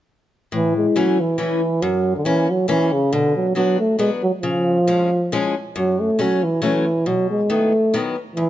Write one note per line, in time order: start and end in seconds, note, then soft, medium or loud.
0.52 0.85 A2 medium
0.52 0.75 E3 medium
0.77 0.98 G#3 medium
0.96 1.17 E3 medium
0.96 1.22 F#3 medium
0.96 1.17 A3 soft
0.96 1.17 C#4 medium
1.20 1.40 E3 medium
1.38 1.60 E3 medium
1.38 1.84 E3 medium
1.38 1.60 A3 soft
1.38 1.60 C#4 medium
1.82 2.15 F#2 medium
1.82 2.16 F#3 medium
2.17 2.28 D3 soft
2.25 2.51 E3 medium
2.25 2.47 F#3 soft
2.25 2.47 A#3 soft
2.25 2.47 C#4 medium
2.50 2.68 F#3 medium
2.68 2.94 E3 medium
2.68 2.90 F#3 medium
2.68 2.90 A#3 soft
2.68 2.90 C#4 medium
2.93 3.14 C#3 medium
3.13 3.46 B2 medium
3.13 3.36 D3 medium
3.36 3.55 F#3 medium
3.55 3.77 F#3 soft
3.55 3.78 F#3 medium
3.55 3.77 B3 soft
3.55 3.77 D4 medium
3.80 3.99 A3 medium
3.99 4.21 F#3 soft
3.99 4.10 G#3 medium
3.99 4.21 B3 medium
3.99 4.21 D4 soft
4.23 4.32 F#3 medium
4.42 4.77 C#3 medium
4.42 5.51 F3 medium
4.87 5.09 F3 medium
4.87 5.09 G#3 soft
4.87 5.09 C#4 medium
5.32 5.53 F3 medium
5.32 5.53 G#3 medium
5.32 5.54 C#4 medium
5.76 6.09 F#2 medium
5.76 6.01 F#3 medium
6.00 6.23 A3 medium
6.19 6.41 F#3 soft
6.19 6.45 F#3 medium
6.19 6.41 A3 soft
6.19 6.41 C#4 medium
6.43 6.64 E3 medium
6.62 7.09 E3 medium
6.62 6.84 F#3 medium
6.62 6.84 A3 medium
6.62 6.84 C#4 medium
7.06 7.40 B2 medium
7.06 7.30 F#3 medium
7.30 7.53 G#3 medium
7.50 7.71 D#3 medium
7.50 7.71 F#3 soft
7.50 7.94 A3 medium
7.50 7.71 B3 soft
7.94 8.15 D#3 medium
7.94 8.15 F#3 medium
7.94 8.15 B3 medium
8.36 8.49 E2 medium
8.36 8.49 E3 medium